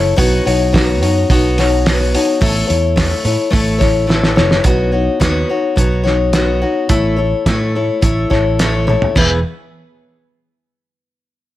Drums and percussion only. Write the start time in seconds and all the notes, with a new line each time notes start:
0.18 kick, open hi-hat
0.47 open hi-hat
0.74 kick, snare, open hi-hat
1.03 open hi-hat
1.30 kick, open hi-hat
1.58 snare, open hi-hat
1.86 snare, open hi-hat
2.15 open hi-hat
2.42 kick, open hi-hat
2.70 open hi-hat
2.97 kick, snare, open hi-hat
3.25 open hi-hat
3.53 kick, open hi-hat
3.81 kick, snare, open hi-hat
4.10 snare
4.24 snare
4.37 snare
4.51 snare
4.64 kick, closed hi-hat
5.21 kick, snare, closed hi-hat
5.77 kick, closed hi-hat
6.06 snare
6.33 snare, closed hi-hat
6.89 kick, closed hi-hat
7.46 kick, snare, closed hi-hat
8.02 kick, closed hi-hat
8.31 kick, snare
8.59 snare, closed hi-hat
8.88 high tom
9.02 floor tom
9.16 kick, crash